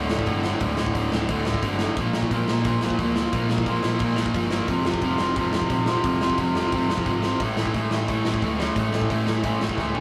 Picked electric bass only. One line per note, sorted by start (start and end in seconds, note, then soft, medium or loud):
0.10 0.23 D1 medium
0.27 0.52 G1 medium
0.61 0.74 D1 medium
0.79 0.91 D1 medium
0.95 1.08 D1 medium
1.12 1.25 D1 medium
1.29 1.41 D2 loud
1.46 1.59 D1 medium
1.62 1.88 G1 medium
1.97 2.09 A#1 medium
2.16 2.28 A#1 medium
2.31 2.44 A#1 medium
2.49 2.61 A#1 medium
2.65 2.77 A#2 medium
2.82 2.95 A#1 medium
2.99 3.24 D2 medium
3.33 3.45 A#1 medium
3.49 3.62 A#1 medium
3.66 3.79 A#1 medium
3.84 3.96 A#1 medium
4.01 4.13 A#2 loud
4.18 4.30 A#1 medium
4.35 4.60 G1 medium
4.68 4.81 F1 loud
4.85 4.98 F1 medium
5.02 5.15 F1 medium
5.20 5.32 F1 medium
5.36 5.49 F2 medium
5.54 5.66 F1 medium
5.70 5.95 A#1 medium
6.04 6.17 F1 medium
6.20 6.33 F1 medium
6.38 6.51 F1 medium
6.55 6.67 F1 medium
6.72 6.85 F2 medium
6.88 7.01 F1 medium
7.06 7.31 G#1 medium
7.40 7.53 A1 loud
7.56 7.69 A1 medium
7.74 7.87 A1 medium
7.91 8.04 A1 medium
8.08 8.21 A2 medium
8.25 8.38 A1 medium
8.43 8.67 D2 medium
8.76 8.89 A1 medium
8.93 9.05 A1 medium
9.10 9.22 A1 medium
9.27 9.40 A1 medium
9.44 9.56 A2 medium
9.61 9.73 A1 medium
9.78 10.00 D2 medium